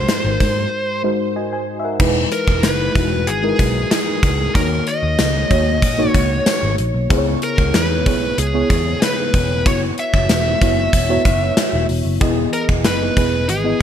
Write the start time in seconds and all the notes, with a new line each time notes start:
Already playing: G#2 G#3 D#4 F#4 A#4 C5
0.09 snare, closed hi-hat
0.25 G#1
0.40 G#2, kick, closed hi-hat
1.03 G#3 D#4 F#4 C5
1.36 F#4 D#5 G#5
1.53 C5 G#5
1.80 E5
1.84 A#4 F#5
2.00 E1 E3 G#3 D#4 E4 B4, kick, crash
2.32 A#4, closed hi-hat
2.47 E1, kick
2.63 F#1 B4, snare, closed hi-hat, tambourine
2.95 E1 G#3 D#4 E4 F#4, kick, closed hi-hat
3.27 G#1 G#4, closed hi-hat
3.43 G#3 D#4 E4 A#4
3.59 B1, kick, closed hi-hat
3.91 G#4, snare, closed hi-hat, tambourine
4.23 C#2, kick, closed hi-hat
4.55 D#2 D#3 A#3 D#4 F#4 A#4 C#5, kick, closed hi-hat
4.87 D#5, closed hi-hat
5.03 D#2
5.19 C#2, snare, closed hi-hat, tambourine
5.50 D#2 A#3 D#4 F#4 C#5, kick, closed hi-hat
5.82 A#1, kick, closed hi-hat
5.98 A#3 D#4 F#4 C#5
6.10 C#5
6.14 C#2, kick, closed hi-hat
6.46 snare, closed hi-hat, tambourine
6.63 G#1
6.78 A#1, closed hi-hat
6.94 B1
7.10 C#2 C#3 B3 E4 G#4 C5, kick, closed hi-hat
7.18 C#5
7.42 A#4, closed hi-hat
7.58 C#2, kick
7.74 E2 B4, snare, closed hi-hat, tambourine
8.06 B1 B3 E4 G#4 C#5, kick, closed hi-hat
8.38 C#2 G#4, closed hi-hat
8.54 B3 E4 G#4 C#5
8.70 E2, kick, closed hi-hat
9.02 B4, snare, closed hi-hat, tambourine
9.34 E1, kick, closed hi-hat
9.66 F#1 B3 E4 F#4 C#5, kick, closed hi-hat
9.98 E5, closed hi-hat
10.14 F#1, kick
10.29 E1, snare, closed hi-hat, tambourine
10.61 F#1 B3 E4 F#4 C#5, kick, closed hi-hat
10.93 E1, kick, closed hi-hat
11.09 B3 E4 F#4 C#5
11.25 F#1, kick, closed hi-hat
11.57 snare, closed hi-hat, tambourine
11.73 E1
11.89 E1, open hi-hat
12.05 F#1
12.21 E3 B3 E4 G#4 D#5, kick, closed hi-hat
12.53 A#4, closed hi-hat
12.69 E1, kick
12.84 F#1 B4, snare, closed hi-hat, tambourine
13.16 E1 B3 E4 G#4 B4, kick, closed hi-hat
13.49 G#1 G#4, closed hi-hat
13.64 B3 E4 G#4 D#5